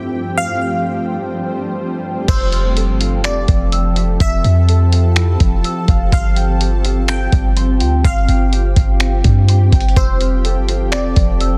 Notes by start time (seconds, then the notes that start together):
Already playing: G2 F3 A3 C4 G4
0.38 F5
2.28 F1 F3 C4 G4 A4 C5 E6, kick, closed hi-hat, crash
2.52 F6, closed hi-hat
2.76 A4, closed hi-hat
2.88 G1
3.00 F4, closed hi-hat
3.18 F1
3.24 C4 D5, finger snap, closed hi-hat
3.48 F1 F3, kick, closed hi-hat
3.72 E6, closed hi-hat
3.96 E5, closed hi-hat
4.20 F1 E5 E6, kick, closed hi-hat
4.44 F2 A5, closed hi-hat
4.69 A4, closed hi-hat
4.92 F4, closed hi-hat
5.16 E4, finger snap, closed hi-hat
5.40 F1 F3, kick, closed hi-hat
5.64 E6, closed hi-hat
5.88 F1 F5, kick, closed hi-hat
6.12 G1 F4 F5 C6, kick, closed hi-hat
6.36 G5, closed hi-hat
6.60 G4, closed hi-hat
6.85 F4, closed hi-hat
7.08 C4 G5, finger snap, closed hi-hat
7.32 G1 G3, kick, closed hi-hat
7.57 C6, closed hi-hat
7.80 D2 G5, closed hi-hat
8.04 G1 F5 C6, kick, closed hi-hat
8.28 G1 G5, closed hi-hat
8.52 G4, closed hi-hat
8.76 G1 F4, kick, closed hi-hat
9.00 C4, finger snap, closed hi-hat
9.24 G2 G3, kick, closed hi-hat
9.49 C6, closed hi-hat
9.72 G1 G5, kick, closed hi-hat
9.80 closed hi-hat
9.88 closed hi-hat
9.96 F1 F3 A4 C5 E6, kick, closed hi-hat
10.21 F6, closed hi-hat
10.44 A4, closed hi-hat
10.56 G1
10.69 F4, closed hi-hat
10.86 F1
10.92 C4 D5, finger snap, closed hi-hat
11.16 F1 F3, kick, closed hi-hat
11.41 E6, closed hi-hat